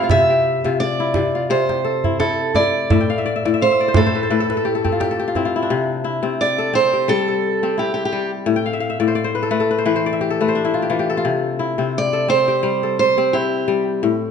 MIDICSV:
0, 0, Header, 1, 4, 480
1, 0, Start_track
1, 0, Key_signature, 0, "major"
1, 0, Tempo, 698487
1, 69, Time_signature, 4, 2, 24, 8
1, 4868, Tempo, 693642
1, 9868, End_track
2, 0, Start_track
2, 0, Title_t, "Steel-string acoustic guitar"
2, 0, Program_c, 0, 25
2, 74, Note_on_c, 0, 76, 105
2, 546, Note_off_c, 0, 76, 0
2, 549, Note_on_c, 0, 74, 95
2, 1004, Note_off_c, 0, 74, 0
2, 1034, Note_on_c, 0, 72, 89
2, 1509, Note_on_c, 0, 69, 75
2, 1530, Note_off_c, 0, 72, 0
2, 1756, Note_on_c, 0, 74, 93
2, 1759, Note_off_c, 0, 69, 0
2, 2486, Note_off_c, 0, 74, 0
2, 2489, Note_on_c, 0, 72, 93
2, 2724, Note_on_c, 0, 69, 82
2, 2729, Note_off_c, 0, 72, 0
2, 3651, Note_off_c, 0, 69, 0
2, 4404, Note_on_c, 0, 74, 102
2, 4620, Note_off_c, 0, 74, 0
2, 4639, Note_on_c, 0, 72, 102
2, 4858, Note_off_c, 0, 72, 0
2, 4873, Note_on_c, 0, 69, 91
2, 5354, Note_off_c, 0, 69, 0
2, 5357, Note_on_c, 0, 67, 74
2, 5448, Note_off_c, 0, 67, 0
2, 5459, Note_on_c, 0, 67, 62
2, 5530, Note_off_c, 0, 67, 0
2, 5538, Note_on_c, 0, 67, 73
2, 5712, Note_off_c, 0, 67, 0
2, 8256, Note_on_c, 0, 74, 109
2, 8472, Note_off_c, 0, 74, 0
2, 8475, Note_on_c, 0, 72, 106
2, 8949, Note_off_c, 0, 72, 0
2, 8957, Note_on_c, 0, 72, 97
2, 9192, Note_on_c, 0, 67, 67
2, 9200, Note_off_c, 0, 72, 0
2, 9538, Note_off_c, 0, 67, 0
2, 9868, End_track
3, 0, Start_track
3, 0, Title_t, "Kora"
3, 0, Program_c, 1, 46
3, 0, Note_on_c, 1, 45, 80
3, 0, Note_on_c, 1, 60, 81
3, 0, Note_on_c, 1, 64, 68
3, 0, Note_on_c, 1, 67, 65
3, 0, Note_on_c, 1, 69, 62
3, 23, Note_on_c, 1, 65, 69
3, 74, Note_on_c, 1, 48, 79
3, 103, Note_off_c, 1, 45, 0
3, 204, Note_off_c, 1, 67, 0
3, 207, Note_on_c, 1, 67, 58
3, 440, Note_off_c, 1, 48, 0
3, 447, Note_off_c, 1, 65, 0
3, 448, Note_on_c, 1, 48, 73
3, 450, Note_on_c, 1, 65, 58
3, 452, Note_off_c, 1, 69, 0
3, 491, Note_off_c, 1, 64, 0
3, 686, Note_on_c, 1, 64, 64
3, 784, Note_off_c, 1, 48, 0
3, 792, Note_on_c, 1, 48, 73
3, 925, Note_off_c, 1, 65, 0
3, 928, Note_on_c, 1, 65, 59
3, 1022, Note_off_c, 1, 48, 0
3, 1031, Note_on_c, 1, 48, 81
3, 1074, Note_off_c, 1, 60, 0
3, 1160, Note_off_c, 1, 67, 0
3, 1163, Note_on_c, 1, 67, 59
3, 1268, Note_on_c, 1, 69, 60
3, 1401, Note_off_c, 1, 64, 0
3, 1404, Note_on_c, 1, 64, 71
3, 1445, Note_off_c, 1, 65, 0
3, 1511, Note_off_c, 1, 64, 0
3, 1513, Note_on_c, 1, 64, 70
3, 1750, Note_off_c, 1, 64, 0
3, 1753, Note_on_c, 1, 64, 72
3, 1997, Note_on_c, 1, 45, 79
3, 2000, Note_on_c, 1, 76, 65
3, 2030, Note_off_c, 1, 48, 0
3, 2065, Note_on_c, 1, 79, 65
3, 2128, Note_on_c, 1, 77, 74
3, 2133, Note_off_c, 1, 67, 0
3, 2170, Note_off_c, 1, 64, 0
3, 2170, Note_off_c, 1, 76, 0
3, 2174, Note_off_c, 1, 69, 0
3, 2186, Note_on_c, 1, 76, 68
3, 2238, Note_on_c, 1, 74, 72
3, 2305, Note_off_c, 1, 76, 0
3, 2308, Note_on_c, 1, 76, 70
3, 2349, Note_off_c, 1, 77, 0
3, 2366, Note_off_c, 1, 45, 0
3, 2370, Note_off_c, 1, 74, 0
3, 2373, Note_on_c, 1, 74, 64
3, 2374, Note_on_c, 1, 45, 69
3, 2429, Note_off_c, 1, 76, 0
3, 2432, Note_on_c, 1, 76, 65
3, 2484, Note_on_c, 1, 77, 67
3, 2549, Note_off_c, 1, 76, 0
3, 2552, Note_on_c, 1, 76, 60
3, 2612, Note_off_c, 1, 74, 0
3, 2615, Note_on_c, 1, 74, 71
3, 2667, Note_on_c, 1, 72, 66
3, 2706, Note_off_c, 1, 79, 0
3, 2709, Note_off_c, 1, 45, 0
3, 2717, Note_on_c, 1, 45, 80
3, 2720, Note_on_c, 1, 71, 68
3, 2790, Note_off_c, 1, 72, 0
3, 2792, Note_on_c, 1, 72, 67
3, 2849, Note_off_c, 1, 71, 0
3, 2852, Note_on_c, 1, 71, 66
3, 2903, Note_off_c, 1, 72, 0
3, 2906, Note_on_c, 1, 72, 65
3, 2950, Note_off_c, 1, 45, 0
3, 2957, Note_off_c, 1, 71, 0
3, 2958, Note_on_c, 1, 45, 80
3, 2960, Note_on_c, 1, 71, 72
3, 3026, Note_on_c, 1, 69, 71
3, 3089, Note_off_c, 1, 71, 0
3, 3091, Note_on_c, 1, 71, 57
3, 3133, Note_off_c, 1, 72, 0
3, 3137, Note_off_c, 1, 69, 0
3, 3140, Note_on_c, 1, 69, 65
3, 3170, Note_off_c, 1, 77, 0
3, 3195, Note_on_c, 1, 67, 67
3, 3261, Note_off_c, 1, 69, 0
3, 3262, Note_off_c, 1, 76, 0
3, 3264, Note_on_c, 1, 69, 67
3, 3326, Note_off_c, 1, 67, 0
3, 3329, Note_on_c, 1, 67, 66
3, 3330, Note_on_c, 1, 60, 65
3, 3371, Note_off_c, 1, 71, 0
3, 3376, Note_off_c, 1, 74, 0
3, 3382, Note_on_c, 1, 65, 59
3, 3434, Note_off_c, 1, 67, 0
3, 3436, Note_on_c, 1, 67, 74
3, 3508, Note_off_c, 1, 69, 0
3, 3511, Note_on_c, 1, 69, 66
3, 3567, Note_off_c, 1, 67, 0
3, 3570, Note_on_c, 1, 67, 71
3, 3623, Note_off_c, 1, 65, 0
3, 3626, Note_on_c, 1, 65, 64
3, 3681, Note_off_c, 1, 60, 0
3, 3682, Note_on_c, 1, 64, 63
3, 3683, Note_on_c, 1, 60, 73
3, 3744, Note_off_c, 1, 65, 0
3, 3747, Note_on_c, 1, 65, 67
3, 3817, Note_off_c, 1, 64, 0
3, 3820, Note_on_c, 1, 64, 64
3, 3865, Note_on_c, 1, 62, 68
3, 3919, Note_on_c, 1, 48, 88
3, 3948, Note_off_c, 1, 45, 0
3, 4151, Note_off_c, 1, 64, 0
3, 4153, Note_on_c, 1, 64, 68
3, 4195, Note_off_c, 1, 65, 0
3, 4271, Note_off_c, 1, 48, 0
3, 4278, Note_on_c, 1, 48, 67
3, 4279, Note_off_c, 1, 60, 0
3, 4281, Note_on_c, 1, 60, 68
3, 4416, Note_off_c, 1, 69, 0
3, 4525, Note_on_c, 1, 69, 71
3, 4540, Note_off_c, 1, 67, 0
3, 4625, Note_off_c, 1, 60, 0
3, 4628, Note_on_c, 1, 60, 85
3, 4765, Note_on_c, 1, 67, 67
3, 4866, Note_on_c, 1, 55, 85
3, 5000, Note_off_c, 1, 69, 0
3, 5003, Note_on_c, 1, 69, 59
3, 5020, Note_off_c, 1, 62, 0
3, 5233, Note_off_c, 1, 64, 0
3, 5242, Note_off_c, 1, 60, 0
3, 5245, Note_off_c, 1, 67, 0
3, 5245, Note_on_c, 1, 60, 80
3, 5248, Note_on_c, 1, 67, 65
3, 5347, Note_on_c, 1, 64, 66
3, 5581, Note_off_c, 1, 55, 0
3, 5589, Note_on_c, 1, 55, 79
3, 5821, Note_on_c, 1, 45, 89
3, 5865, Note_off_c, 1, 48, 0
3, 5865, Note_off_c, 1, 55, 0
3, 5890, Note_on_c, 1, 79, 77
3, 5915, Note_off_c, 1, 69, 0
3, 5957, Note_on_c, 1, 77, 66
3, 5998, Note_off_c, 1, 64, 0
3, 6009, Note_on_c, 1, 76, 70
3, 6055, Note_off_c, 1, 77, 0
3, 6058, Note_on_c, 1, 77, 72
3, 6120, Note_off_c, 1, 76, 0
3, 6122, Note_on_c, 1, 76, 72
3, 6184, Note_off_c, 1, 45, 0
3, 6192, Note_on_c, 1, 45, 77
3, 6194, Note_on_c, 1, 74, 71
3, 6225, Note_off_c, 1, 67, 0
3, 6247, Note_on_c, 1, 72, 67
3, 6296, Note_off_c, 1, 74, 0
3, 6299, Note_on_c, 1, 74, 72
3, 6360, Note_off_c, 1, 72, 0
3, 6363, Note_on_c, 1, 72, 69
3, 6435, Note_on_c, 1, 71, 72
3, 6477, Note_off_c, 1, 60, 0
3, 6489, Note_on_c, 1, 69, 71
3, 6535, Note_off_c, 1, 79, 0
3, 6545, Note_off_c, 1, 71, 0
3, 6545, Note_on_c, 1, 57, 84
3, 6547, Note_on_c, 1, 71, 74
3, 6589, Note_off_c, 1, 72, 0
3, 6606, Note_off_c, 1, 69, 0
3, 6609, Note_on_c, 1, 69, 75
3, 6680, Note_off_c, 1, 71, 0
3, 6683, Note_on_c, 1, 71, 68
3, 6737, Note_on_c, 1, 72, 74
3, 6749, Note_off_c, 1, 77, 0
3, 6786, Note_off_c, 1, 71, 0
3, 6786, Note_on_c, 1, 52, 90
3, 6789, Note_on_c, 1, 71, 71
3, 6838, Note_off_c, 1, 76, 0
3, 6853, Note_off_c, 1, 72, 0
3, 6856, Note_on_c, 1, 72, 73
3, 6926, Note_off_c, 1, 74, 0
3, 6929, Note_on_c, 1, 74, 73
3, 6974, Note_on_c, 1, 76, 67
3, 7030, Note_on_c, 1, 67, 74
3, 7094, Note_off_c, 1, 69, 0
3, 7096, Note_on_c, 1, 69, 74
3, 7164, Note_off_c, 1, 57, 0
3, 7167, Note_on_c, 1, 57, 76
3, 7168, Note_off_c, 1, 71, 0
3, 7171, Note_on_c, 1, 71, 70
3, 7212, Note_off_c, 1, 72, 0
3, 7221, Note_on_c, 1, 72, 69
3, 7268, Note_on_c, 1, 62, 74
3, 7333, Note_on_c, 1, 64, 73
3, 7398, Note_on_c, 1, 65, 71
3, 7439, Note_off_c, 1, 76, 0
3, 7453, Note_off_c, 1, 67, 0
3, 7456, Note_on_c, 1, 67, 68
3, 7499, Note_off_c, 1, 52, 0
3, 7503, Note_off_c, 1, 65, 0
3, 7506, Note_on_c, 1, 65, 72
3, 7507, Note_on_c, 1, 52, 80
3, 7548, Note_off_c, 1, 64, 0
3, 7569, Note_off_c, 1, 67, 0
3, 7572, Note_on_c, 1, 67, 73
3, 7641, Note_off_c, 1, 69, 0
3, 7644, Note_on_c, 1, 69, 75
3, 7695, Note_off_c, 1, 65, 0
3, 7695, Note_off_c, 1, 74, 0
3, 7698, Note_on_c, 1, 65, 78
3, 7749, Note_on_c, 1, 48, 84
3, 7784, Note_off_c, 1, 45, 0
3, 7784, Note_off_c, 1, 52, 0
3, 7791, Note_off_c, 1, 71, 0
3, 7989, Note_on_c, 1, 64, 70
3, 8030, Note_off_c, 1, 65, 0
3, 8043, Note_off_c, 1, 72, 0
3, 8111, Note_off_c, 1, 48, 0
3, 8119, Note_on_c, 1, 48, 68
3, 8122, Note_on_c, 1, 60, 63
3, 8357, Note_off_c, 1, 69, 0
3, 8360, Note_on_c, 1, 69, 73
3, 8430, Note_off_c, 1, 62, 0
3, 8463, Note_off_c, 1, 60, 0
3, 8466, Note_on_c, 1, 60, 81
3, 8549, Note_off_c, 1, 57, 0
3, 8549, Note_off_c, 1, 67, 0
3, 8601, Note_on_c, 1, 67, 69
3, 8705, Note_on_c, 1, 55, 89
3, 8843, Note_off_c, 1, 69, 0
3, 8845, Note_on_c, 1, 69, 61
3, 9073, Note_off_c, 1, 64, 0
3, 9082, Note_off_c, 1, 60, 0
3, 9084, Note_on_c, 1, 60, 80
3, 9085, Note_off_c, 1, 67, 0
3, 9087, Note_on_c, 1, 67, 59
3, 9200, Note_on_c, 1, 64, 76
3, 9423, Note_off_c, 1, 55, 0
3, 9431, Note_on_c, 1, 55, 81
3, 9674, Note_on_c, 1, 45, 81
3, 9703, Note_off_c, 1, 48, 0
3, 9703, Note_off_c, 1, 55, 0
3, 9757, Note_off_c, 1, 69, 0
3, 9868, Note_off_c, 1, 45, 0
3, 9868, Note_off_c, 1, 60, 0
3, 9868, Note_off_c, 1, 64, 0
3, 9868, Note_off_c, 1, 67, 0
3, 9868, End_track
4, 0, Start_track
4, 0, Title_t, "Djembe"
4, 66, Note_on_c, 9, 62, 59
4, 66, Note_on_c, 9, 64, 64
4, 134, Note_off_c, 9, 62, 0
4, 134, Note_off_c, 9, 64, 0
4, 201, Note_on_c, 9, 62, 20
4, 270, Note_off_c, 9, 62, 0
4, 443, Note_on_c, 9, 62, 45
4, 511, Note_off_c, 9, 62, 0
4, 785, Note_on_c, 9, 62, 56
4, 785, Note_on_c, 9, 63, 62
4, 853, Note_off_c, 9, 62, 0
4, 853, Note_off_c, 9, 63, 0
4, 1163, Note_on_c, 9, 62, 51
4, 1232, Note_off_c, 9, 62, 0
4, 1402, Note_on_c, 9, 62, 21
4, 1402, Note_on_c, 9, 64, 54
4, 1471, Note_off_c, 9, 62, 0
4, 1471, Note_off_c, 9, 64, 0
4, 1511, Note_on_c, 9, 62, 63
4, 1580, Note_off_c, 9, 62, 0
4, 1749, Note_on_c, 9, 63, 69
4, 1818, Note_off_c, 9, 63, 0
4, 1996, Note_on_c, 9, 62, 63
4, 1996, Note_on_c, 9, 64, 68
4, 2064, Note_off_c, 9, 62, 0
4, 2064, Note_off_c, 9, 64, 0
4, 2238, Note_on_c, 9, 62, 21
4, 2306, Note_off_c, 9, 62, 0
4, 2374, Note_on_c, 9, 62, 50
4, 2443, Note_off_c, 9, 62, 0
4, 2478, Note_on_c, 9, 62, 20
4, 2547, Note_off_c, 9, 62, 0
4, 2608, Note_on_c, 9, 62, 24
4, 2677, Note_off_c, 9, 62, 0
4, 2710, Note_on_c, 9, 62, 68
4, 2710, Note_on_c, 9, 63, 63
4, 2710, Note_on_c, 9, 64, 59
4, 2779, Note_off_c, 9, 62, 0
4, 2779, Note_off_c, 9, 63, 0
4, 2779, Note_off_c, 9, 64, 0
4, 3091, Note_on_c, 9, 62, 47
4, 3160, Note_off_c, 9, 62, 0
4, 3334, Note_on_c, 9, 64, 51
4, 3403, Note_off_c, 9, 64, 0
4, 3442, Note_on_c, 9, 62, 58
4, 3510, Note_off_c, 9, 62, 0
4, 3678, Note_on_c, 9, 63, 60
4, 3747, Note_off_c, 9, 63, 0
4, 9868, End_track
0, 0, End_of_file